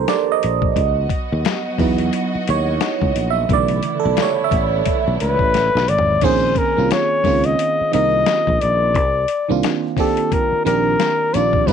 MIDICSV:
0, 0, Header, 1, 7, 480
1, 0, Start_track
1, 0, Tempo, 681818
1, 539, Time_signature, 4, 2, 24, 8
1, 8257, End_track
2, 0, Start_track
2, 0, Title_t, "Flugelhorn"
2, 0, Program_c, 0, 56
2, 3669, Note_on_c, 0, 71, 90
2, 4147, Note_on_c, 0, 74, 95
2, 4158, Note_off_c, 0, 71, 0
2, 4393, Note_on_c, 0, 72, 87
2, 4403, Note_off_c, 0, 74, 0
2, 4630, Note_on_c, 0, 70, 84
2, 4641, Note_off_c, 0, 72, 0
2, 4870, Note_on_c, 0, 73, 88
2, 4881, Note_off_c, 0, 70, 0
2, 5247, Note_on_c, 0, 75, 98
2, 5258, Note_off_c, 0, 73, 0
2, 5582, Note_off_c, 0, 75, 0
2, 5588, Note_on_c, 0, 75, 103
2, 6062, Note_on_c, 0, 74, 88
2, 6073, Note_off_c, 0, 75, 0
2, 6780, Note_off_c, 0, 74, 0
2, 7036, Note_on_c, 0, 69, 77
2, 7272, Note_on_c, 0, 70, 88
2, 7282, Note_off_c, 0, 69, 0
2, 7500, Note_off_c, 0, 70, 0
2, 7504, Note_on_c, 0, 70, 86
2, 7984, Note_on_c, 0, 74, 87
2, 7994, Note_off_c, 0, 70, 0
2, 8224, Note_on_c, 0, 71, 90
2, 8234, Note_off_c, 0, 74, 0
2, 8257, Note_off_c, 0, 71, 0
2, 8257, End_track
3, 0, Start_track
3, 0, Title_t, "FM electric piano"
3, 0, Program_c, 1, 5
3, 0, Control_c, 1, 64, 127
3, 0, Note_on_c, 1, 51, 44
3, 0, Note_on_c, 1, 53, 45
3, 0, Note_on_c, 1, 58, 42
3, 0, Note_on_c, 1, 62, 49
3, 0, Note_on_c, 1, 67, 81
3, 0, Note_on_c, 1, 69, 98
3, 0, Note_on_c, 1, 70, 91
3, 0, Note_on_c, 1, 72, 82
3, 64, Note_on_c, 1, 74, 93
3, 135, Note_off_c, 1, 74, 0
3, 224, Note_on_c, 1, 75, 92
3, 549, Note_off_c, 1, 53, 0
3, 549, Note_off_c, 1, 69, 0
3, 549, Control_c, 1, 64, 0
3, 550, Note_off_c, 1, 58, 0
3, 550, Note_off_c, 1, 67, 0
3, 551, Note_off_c, 1, 72, 0
3, 553, Note_off_c, 1, 62, 0
3, 553, Note_off_c, 1, 70, 0
3, 555, Note_off_c, 1, 51, 0
3, 669, Control_c, 1, 64, 127
3, 1265, Note_on_c, 1, 54, 51
3, 1266, Note_on_c, 1, 64, 56
3, 1269, Note_on_c, 1, 59, 55
3, 1275, Note_on_c, 1, 63, 61
3, 1393, Note_off_c, 1, 75, 0
3, 1759, Note_on_c, 1, 73, 87
3, 1953, Note_off_c, 1, 54, 0
3, 1954, Note_off_c, 1, 64, 0
3, 1956, Note_off_c, 1, 59, 0
3, 1959, Note_off_c, 1, 63, 0
3, 2325, Note_off_c, 1, 73, 0
3, 2326, Note_on_c, 1, 76, 91
3, 2462, Note_off_c, 1, 76, 0
3, 2468, Control_c, 1, 64, 0
3, 2468, Note_on_c, 1, 50, 55
3, 2474, Note_on_c, 1, 52, 51
3, 2474, Note_on_c, 1, 57, 51
3, 2481, Note_on_c, 1, 49, 58
3, 2487, Note_on_c, 1, 74, 103
3, 2593, Control_c, 1, 64, 127
3, 2802, Note_off_c, 1, 74, 0
3, 2813, Note_on_c, 1, 69, 85
3, 2877, Note_off_c, 1, 69, 0
3, 2972, Note_on_c, 1, 73, 92
3, 3105, Note_off_c, 1, 73, 0
3, 3127, Note_on_c, 1, 76, 93
3, 3155, Note_off_c, 1, 50, 0
3, 3158, Note_off_c, 1, 52, 0
3, 3158, Note_off_c, 1, 57, 0
3, 3162, Note_off_c, 1, 49, 0
3, 3805, Note_off_c, 1, 76, 0
3, 4379, Note_on_c, 1, 51, 84
3, 4387, Note_on_c, 1, 58, 79
3, 4388, Control_c, 1, 64, 0
3, 4391, Note_on_c, 1, 60, 76
3, 4395, Note_on_c, 1, 61, 81
3, 4400, Note_on_c, 1, 68, 92
3, 4498, Control_c, 1, 64, 127
3, 4721, Note_off_c, 1, 51, 0
3, 4725, Note_off_c, 1, 58, 0
3, 4727, Note_off_c, 1, 60, 0
3, 4729, Note_off_c, 1, 61, 0
3, 4732, Note_off_c, 1, 68, 0
3, 4763, Note_on_c, 1, 51, 59
3, 4765, Note_on_c, 1, 58, 55
3, 4772, Note_on_c, 1, 60, 56
3, 4777, Note_on_c, 1, 61, 53
3, 4781, Note_on_c, 1, 65, 68
3, 5073, Note_off_c, 1, 51, 0
3, 5074, Note_off_c, 1, 58, 0
3, 5077, Note_off_c, 1, 60, 0
3, 5080, Note_off_c, 1, 61, 0
3, 5082, Note_off_c, 1, 65, 0
3, 5099, Note_on_c, 1, 51, 70
3, 5107, Note_on_c, 1, 58, 58
3, 5109, Note_on_c, 1, 60, 63
3, 5115, Note_on_c, 1, 61, 65
3, 5120, Note_on_c, 1, 65, 76
3, 5542, Note_off_c, 1, 51, 0
3, 5546, Note_off_c, 1, 58, 0
3, 5547, Note_off_c, 1, 60, 0
3, 5550, Note_off_c, 1, 61, 0
3, 5553, Note_off_c, 1, 65, 0
3, 5574, Note_on_c, 1, 51, 70
3, 5579, Note_on_c, 1, 58, 61
3, 5585, Note_on_c, 1, 60, 65
3, 5588, Note_on_c, 1, 63, 62
3, 5595, Note_on_c, 1, 70, 68
3, 6296, Note_off_c, 1, 51, 0
3, 6299, Note_off_c, 1, 58, 0
3, 6302, Note_off_c, 1, 60, 0
3, 6303, Note_off_c, 1, 63, 0
3, 6307, Note_off_c, 1, 70, 0
3, 6309, Control_c, 1, 64, 0
3, 6426, Control_c, 1, 64, 127
3, 6678, Note_on_c, 1, 51, 69
3, 6684, Note_on_c, 1, 58, 67
3, 6686, Note_on_c, 1, 60, 66
3, 6692, Note_on_c, 1, 62, 68
3, 6699, Note_on_c, 1, 65, 83
3, 6990, Note_off_c, 1, 51, 0
3, 6993, Note_off_c, 1, 58, 0
3, 6994, Note_off_c, 1, 60, 0
3, 6997, Note_off_c, 1, 62, 0
3, 7001, Note_off_c, 1, 65, 0
3, 7018, Note_on_c, 1, 51, 71
3, 7023, Note_on_c, 1, 58, 61
3, 7027, Note_on_c, 1, 60, 66
3, 7031, Note_on_c, 1, 62, 69
3, 7039, Note_on_c, 1, 67, 81
3, 7462, Note_off_c, 1, 51, 0
3, 7464, Note_off_c, 1, 58, 0
3, 7466, Note_off_c, 1, 60, 0
3, 7469, Note_off_c, 1, 62, 0
3, 7472, Note_off_c, 1, 67, 0
3, 7498, Note_on_c, 1, 51, 71
3, 7499, Note_on_c, 1, 58, 60
3, 7504, Note_on_c, 1, 60, 64
3, 7513, Note_on_c, 1, 62, 65
3, 7515, Note_on_c, 1, 67, 76
3, 7942, Note_off_c, 1, 51, 0
3, 7943, Note_off_c, 1, 58, 0
3, 7945, Note_off_c, 1, 60, 0
3, 7950, Note_off_c, 1, 62, 0
3, 7951, Note_off_c, 1, 67, 0
3, 7980, Note_on_c, 1, 51, 66
3, 7986, Note_on_c, 1, 58, 57
3, 7990, Note_on_c, 1, 60, 57
3, 7995, Note_on_c, 1, 62, 61
3, 8002, Note_on_c, 1, 65, 76
3, 8201, Note_off_c, 1, 51, 0
3, 8204, Note_off_c, 1, 58, 0
3, 8206, Note_off_c, 1, 60, 0
3, 8209, Note_off_c, 1, 62, 0
3, 8212, Note_off_c, 1, 65, 0
3, 8220, Note_on_c, 1, 63, 91
3, 8226, Control_c, 1, 64, 0
3, 8226, Note_on_c, 1, 54, 76
3, 8232, Note_on_c, 1, 59, 76
3, 8257, Note_off_c, 1, 54, 0
3, 8257, Note_off_c, 1, 59, 0
3, 8257, Note_off_c, 1, 63, 0
3, 8257, End_track
4, 0, Start_track
4, 0, Title_t, "String section"
4, 0, Program_c, 2, 48
4, 526, Note_on_c, 2, 66, 73
4, 527, Note_on_c, 2, 59, 62
4, 530, Note_on_c, 2, 54, 67
4, 530, Note_on_c, 2, 75, 59
4, 2433, Note_off_c, 2, 59, 0
4, 2433, Note_off_c, 2, 66, 0
4, 2435, Note_off_c, 2, 54, 0
4, 2435, Note_off_c, 2, 75, 0
4, 2464, Note_on_c, 2, 57, 62
4, 2465, Note_on_c, 2, 52, 66
4, 2466, Note_on_c, 2, 59, 63
4, 2467, Note_on_c, 2, 64, 77
4, 4362, Note_off_c, 2, 57, 0
4, 4363, Note_off_c, 2, 52, 0
4, 4363, Note_off_c, 2, 59, 0
4, 4363, Note_off_c, 2, 64, 0
4, 8203, Note_on_c, 2, 54, 62
4, 8204, Note_on_c, 2, 49, 61
4, 8204, Note_on_c, 2, 59, 60
4, 8204, Note_on_c, 2, 66, 77
4, 8257, Note_off_c, 2, 49, 0
4, 8257, Note_off_c, 2, 54, 0
4, 8257, Note_off_c, 2, 59, 0
4, 8257, Note_off_c, 2, 66, 0
4, 8257, End_track
5, 0, Start_track
5, 0, Title_t, "Fretless electric bass"
5, 0, Program_c, 3, 35
5, 311, Note_on_c, 3, 34, 84
5, 512, Note_off_c, 3, 34, 0
5, 540, Note_on_c, 3, 37, 88
5, 746, Note_off_c, 3, 37, 0
5, 932, Note_on_c, 3, 39, 91
5, 1012, Note_off_c, 3, 39, 0
5, 1263, Note_on_c, 3, 40, 87
5, 1467, Note_off_c, 3, 40, 0
5, 1751, Note_on_c, 3, 39, 92
5, 1952, Note_off_c, 3, 39, 0
5, 2129, Note_on_c, 3, 37, 85
5, 2210, Note_off_c, 3, 37, 0
5, 2224, Note_on_c, 3, 34, 77
5, 2428, Note_off_c, 3, 34, 0
5, 2467, Note_on_c, 3, 35, 108
5, 2670, Note_off_c, 3, 35, 0
5, 2854, Note_on_c, 3, 35, 95
5, 2933, Note_off_c, 3, 35, 0
5, 3184, Note_on_c, 3, 33, 92
5, 3388, Note_off_c, 3, 33, 0
5, 3574, Note_on_c, 3, 35, 101
5, 3652, Note_off_c, 3, 35, 0
5, 3671, Note_on_c, 3, 37, 89
5, 3787, Note_off_c, 3, 37, 0
5, 3805, Note_on_c, 3, 33, 76
5, 4009, Note_off_c, 3, 33, 0
5, 4049, Note_on_c, 3, 35, 91
5, 4130, Note_off_c, 3, 35, 0
5, 4148, Note_on_c, 3, 32, 84
5, 4350, Note_off_c, 3, 32, 0
5, 4385, Note_on_c, 3, 34, 86
5, 4588, Note_off_c, 3, 34, 0
5, 4775, Note_on_c, 3, 36, 93
5, 4853, Note_off_c, 3, 36, 0
5, 5103, Note_on_c, 3, 37, 78
5, 5307, Note_off_c, 3, 37, 0
5, 5593, Note_on_c, 3, 36, 79
5, 5793, Note_off_c, 3, 36, 0
5, 5972, Note_on_c, 3, 34, 84
5, 6051, Note_off_c, 3, 34, 0
5, 6077, Note_on_c, 3, 34, 78
5, 6304, Note_off_c, 3, 34, 0
5, 6304, Note_on_c, 3, 36, 107
5, 6508, Note_off_c, 3, 36, 0
5, 6691, Note_on_c, 3, 36, 86
5, 6771, Note_off_c, 3, 36, 0
5, 7506, Note_on_c, 3, 34, 79
5, 7709, Note_off_c, 3, 34, 0
5, 7991, Note_on_c, 3, 34, 78
5, 8192, Note_off_c, 3, 34, 0
5, 8223, Note_on_c, 3, 37, 91
5, 8257, Note_off_c, 3, 37, 0
5, 8257, End_track
6, 0, Start_track
6, 0, Title_t, "Muted fretless electric bass strokes"
6, 1656, Note_on_c, 9, 29, 46
6, 1726, Note_off_c, 9, 29, 0
6, 5498, Note_on_c, 9, 29, 48
6, 5569, Note_off_c, 9, 29, 0
6, 7410, Note_on_c, 9, 29, 46
6, 7480, Note_off_c, 9, 29, 0
6, 8257, End_track
7, 0, Start_track
7, 0, Title_t, "Drums"
7, 56, Note_on_c, 9, 42, 71
7, 57, Note_on_c, 9, 38, 101
7, 126, Note_off_c, 9, 42, 0
7, 128, Note_off_c, 9, 38, 0
7, 301, Note_on_c, 9, 42, 67
7, 372, Note_off_c, 9, 42, 0
7, 436, Note_on_c, 9, 36, 96
7, 506, Note_off_c, 9, 36, 0
7, 534, Note_on_c, 9, 36, 98
7, 538, Note_on_c, 9, 42, 69
7, 605, Note_off_c, 9, 36, 0
7, 608, Note_off_c, 9, 42, 0
7, 770, Note_on_c, 9, 36, 85
7, 775, Note_on_c, 9, 42, 61
7, 841, Note_off_c, 9, 36, 0
7, 845, Note_off_c, 9, 42, 0
7, 1020, Note_on_c, 9, 42, 87
7, 1028, Note_on_c, 9, 38, 116
7, 1090, Note_off_c, 9, 42, 0
7, 1098, Note_off_c, 9, 38, 0
7, 1257, Note_on_c, 9, 36, 90
7, 1263, Note_on_c, 9, 46, 46
7, 1327, Note_off_c, 9, 36, 0
7, 1334, Note_off_c, 9, 46, 0
7, 1397, Note_on_c, 9, 42, 49
7, 1467, Note_off_c, 9, 42, 0
7, 1499, Note_on_c, 9, 42, 86
7, 1569, Note_off_c, 9, 42, 0
7, 1742, Note_on_c, 9, 42, 67
7, 1812, Note_off_c, 9, 42, 0
7, 1975, Note_on_c, 9, 42, 73
7, 1977, Note_on_c, 9, 38, 112
7, 2046, Note_off_c, 9, 42, 0
7, 2047, Note_off_c, 9, 38, 0
7, 2123, Note_on_c, 9, 36, 87
7, 2193, Note_off_c, 9, 36, 0
7, 2222, Note_on_c, 9, 42, 73
7, 2293, Note_off_c, 9, 42, 0
7, 2458, Note_on_c, 9, 36, 98
7, 2461, Note_on_c, 9, 42, 62
7, 2528, Note_off_c, 9, 36, 0
7, 2531, Note_off_c, 9, 42, 0
7, 2594, Note_on_c, 9, 42, 51
7, 2664, Note_off_c, 9, 42, 0
7, 2694, Note_on_c, 9, 42, 58
7, 2764, Note_off_c, 9, 42, 0
7, 2934, Note_on_c, 9, 42, 95
7, 2942, Note_on_c, 9, 38, 115
7, 3005, Note_off_c, 9, 42, 0
7, 3012, Note_off_c, 9, 38, 0
7, 3177, Note_on_c, 9, 36, 85
7, 3180, Note_on_c, 9, 42, 68
7, 3247, Note_off_c, 9, 36, 0
7, 3251, Note_off_c, 9, 42, 0
7, 3418, Note_on_c, 9, 42, 87
7, 3423, Note_on_c, 9, 36, 98
7, 3488, Note_off_c, 9, 42, 0
7, 3493, Note_off_c, 9, 36, 0
7, 3663, Note_on_c, 9, 42, 71
7, 3734, Note_off_c, 9, 42, 0
7, 3796, Note_on_c, 9, 36, 82
7, 3866, Note_off_c, 9, 36, 0
7, 3901, Note_on_c, 9, 42, 76
7, 3906, Note_on_c, 9, 38, 55
7, 3972, Note_off_c, 9, 42, 0
7, 3977, Note_off_c, 9, 38, 0
7, 4062, Note_on_c, 9, 38, 65
7, 4132, Note_off_c, 9, 38, 0
7, 4141, Note_on_c, 9, 42, 68
7, 4212, Note_off_c, 9, 42, 0
7, 4213, Note_on_c, 9, 43, 108
7, 4284, Note_off_c, 9, 43, 0
7, 4374, Note_on_c, 9, 49, 71
7, 4377, Note_on_c, 9, 36, 102
7, 4380, Note_on_c, 9, 42, 64
7, 4445, Note_off_c, 9, 49, 0
7, 4448, Note_off_c, 9, 36, 0
7, 4450, Note_off_c, 9, 42, 0
7, 4612, Note_on_c, 9, 36, 85
7, 4616, Note_on_c, 9, 42, 59
7, 4683, Note_off_c, 9, 36, 0
7, 4686, Note_off_c, 9, 42, 0
7, 4862, Note_on_c, 9, 42, 83
7, 4870, Note_on_c, 9, 38, 114
7, 4933, Note_off_c, 9, 42, 0
7, 4940, Note_off_c, 9, 38, 0
7, 5097, Note_on_c, 9, 36, 89
7, 5102, Note_on_c, 9, 46, 47
7, 5167, Note_off_c, 9, 36, 0
7, 5173, Note_off_c, 9, 46, 0
7, 5236, Note_on_c, 9, 42, 51
7, 5306, Note_off_c, 9, 42, 0
7, 5344, Note_on_c, 9, 42, 76
7, 5414, Note_off_c, 9, 42, 0
7, 5585, Note_on_c, 9, 42, 68
7, 5655, Note_off_c, 9, 42, 0
7, 5817, Note_on_c, 9, 42, 69
7, 5818, Note_on_c, 9, 38, 99
7, 5887, Note_off_c, 9, 42, 0
7, 5889, Note_off_c, 9, 38, 0
7, 5964, Note_on_c, 9, 36, 77
7, 6034, Note_off_c, 9, 36, 0
7, 6064, Note_on_c, 9, 42, 64
7, 6135, Note_off_c, 9, 42, 0
7, 6298, Note_on_c, 9, 36, 93
7, 6303, Note_on_c, 9, 42, 63
7, 6368, Note_off_c, 9, 36, 0
7, 6373, Note_off_c, 9, 42, 0
7, 6534, Note_on_c, 9, 42, 59
7, 6605, Note_off_c, 9, 42, 0
7, 6782, Note_on_c, 9, 42, 85
7, 6790, Note_on_c, 9, 38, 111
7, 6852, Note_off_c, 9, 42, 0
7, 6860, Note_off_c, 9, 38, 0
7, 7016, Note_on_c, 9, 36, 82
7, 7023, Note_on_c, 9, 46, 47
7, 7086, Note_off_c, 9, 36, 0
7, 7093, Note_off_c, 9, 46, 0
7, 7159, Note_on_c, 9, 42, 49
7, 7230, Note_off_c, 9, 42, 0
7, 7263, Note_on_c, 9, 36, 87
7, 7264, Note_on_c, 9, 42, 86
7, 7333, Note_off_c, 9, 36, 0
7, 7334, Note_off_c, 9, 42, 0
7, 7509, Note_on_c, 9, 42, 63
7, 7580, Note_off_c, 9, 42, 0
7, 7742, Note_on_c, 9, 42, 68
7, 7743, Note_on_c, 9, 38, 95
7, 7812, Note_off_c, 9, 42, 0
7, 7813, Note_off_c, 9, 38, 0
7, 7984, Note_on_c, 9, 42, 62
7, 8054, Note_off_c, 9, 42, 0
7, 8117, Note_on_c, 9, 36, 96
7, 8188, Note_off_c, 9, 36, 0
7, 8217, Note_on_c, 9, 36, 96
7, 8224, Note_on_c, 9, 42, 66
7, 8257, Note_off_c, 9, 36, 0
7, 8257, Note_off_c, 9, 42, 0
7, 8257, End_track
0, 0, End_of_file